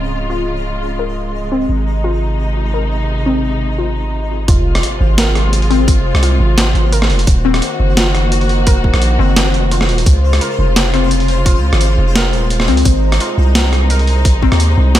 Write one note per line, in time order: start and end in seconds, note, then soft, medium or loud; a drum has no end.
0.00 1.67 C#1 medium
0.00 1.67 C#3 medium
0.00 4.44 G#3 medium
0.00 0.28 C4 loud
0.00 1.67 F4 medium
0.00 4.49 D#5 medium
0.30 0.46 F4 medium
0.99 1.50 A#4 medium
1.52 1.69 C4 loud
1.69 4.47 G#1 medium
1.69 4.46 C3 medium
1.69 4.46 D#4 medium
2.04 2.21 F4 medium
2.74 3.25 A#4 medium
3.26 3.77 C4 loud
3.78 3.95 F4 medium
4.48 4.82 F1 loud
4.48 7.25 C3 medium
4.48 7.25 G#3 medium
4.48 4.65 F4 medium
4.48 7.25 F4 medium
4.48 15.00 C5 medium
4.48 kick loud
4.48 closed hi-hat medium
4.48 sub drop medium
4.75 cross-stick medium
4.75 open hi-hat soft
4.83 closed hi-hat medium
5.00 5.98 G#1 loud
5.18 5.69 A#4 medium
5.18 snare loud
5.18 closed hi-hat medium
5.35 cross-stick medium
5.35 closed hi-hat soft
5.53 closed hi-hat medium
5.62 open hi-hat soft
5.70 6.21 C4 loud
5.70 open hi-hat soft
5.88 kick loud
5.88 closed hi-hat medium
5.97 6.13 F1 medium
6.15 6.39 C2 medium
6.15 cross-stick medium
6.15 open hi-hat soft
6.23 6.39 F4 medium
6.23 closed hi-hat medium
6.40 6.74 G#1 medium
6.58 snare loud
6.58 closed hi-hat medium
6.75 7.11 G#1 medium
6.75 closed hi-hat soft
6.92 7.27 A#4 medium
6.92 closed hi-hat medium
7.02 cross-stick medium
7.02 snare soft
7.10 7.26 F1 loud
7.10 open hi-hat soft
7.19 open hi-hat medium
7.27 7.61 D#1 loud
7.27 10.04 D#3 medium
7.27 10.04 A#3 medium
7.27 10.04 F#4 medium
7.27 kick loud
7.27 closed hi-hat medium
7.45 7.96 C4 loud
7.54 cross-stick medium
7.54 open hi-hat soft
7.62 closed hi-hat medium
7.80 8.78 F#1 loud
7.97 8.14 F4 medium
7.97 snare loud
7.97 closed hi-hat medium
8.15 cross-stick medium
8.15 closed hi-hat soft
8.32 closed hi-hat medium
8.41 open hi-hat soft
8.49 open hi-hat soft
8.67 9.18 A#4 medium
8.67 kick loud
8.67 closed hi-hat medium
8.76 8.92 D#1 medium
8.84 kick medium
8.94 9.18 A#1 medium
8.94 cross-stick medium
8.94 open hi-hat soft
9.02 closed hi-hat medium
9.19 9.56 F#1 loud
9.19 9.70 C4 loud
9.36 snare loud
9.36 closed hi-hat medium
9.54 9.90 F1 medium
9.54 closed hi-hat soft
9.71 9.88 F4 medium
9.71 closed hi-hat medium
9.81 cross-stick medium
9.81 snare soft
9.89 10.05 D#1 loud
9.89 open hi-hat soft
9.98 open hi-hat medium
10.06 10.40 C#2 loud
10.06 12.83 C#3 medium
10.06 15.00 G#3 medium
10.06 12.83 F4 medium
10.06 kick loud
10.06 closed hi-hat medium
10.33 cross-stick medium
10.33 open hi-hat soft
10.41 10.92 A#4 medium
10.41 closed hi-hat medium
10.59 11.57 F1 medium
10.76 snare loud
10.76 closed hi-hat medium
10.94 11.44 C4 loud
10.94 cross-stick medium
10.94 closed hi-hat soft
11.11 closed hi-hat medium
11.20 open hi-hat soft
11.28 open hi-hat soft
11.46 11.63 F4 medium
11.46 kick loud
11.46 closed hi-hat medium
11.55 11.71 C#2 medium
11.73 11.97 G#1 medium
11.73 cross-stick medium
11.73 open hi-hat soft
11.81 closed hi-hat medium
11.98 12.35 F1 loud
12.16 12.66 A#4 medium
12.16 snare loud
12.16 closed hi-hat medium
12.33 12.69 D#1 medium
12.33 closed hi-hat soft
12.50 closed hi-hat medium
12.60 cross-stick medium
12.60 snare soft
12.68 12.84 C#2 loud
12.68 12.86 C4 loud
12.68 open hi-hat soft
12.77 open hi-hat medium
12.85 13.19 G#1 loud
12.85 15.00 C3 medium
12.85 15.00 D#4 medium
12.85 kick loud
12.85 closed hi-hat medium
13.12 cross-stick medium
13.12 open hi-hat soft
13.20 13.37 F4 medium
13.20 closed hi-hat medium
13.38 14.36 C2 medium
13.55 snare loud
13.55 closed hi-hat medium
13.73 cross-stick medium
13.73 closed hi-hat soft
13.90 14.41 A#4 medium
13.90 closed hi-hat medium
13.99 open hi-hat soft
14.07 open hi-hat soft
14.25 kick loud
14.25 closed hi-hat medium
14.35 14.50 G#1 medium
14.42 14.93 C4 loud
14.42 kick medium
14.52 14.76 D#2 medium
14.52 cross-stick medium
14.52 open hi-hat soft
14.60 closed hi-hat medium
14.78 15.00 C2 loud
14.95 15.00 F4 medium
14.95 snare loud
14.95 closed hi-hat medium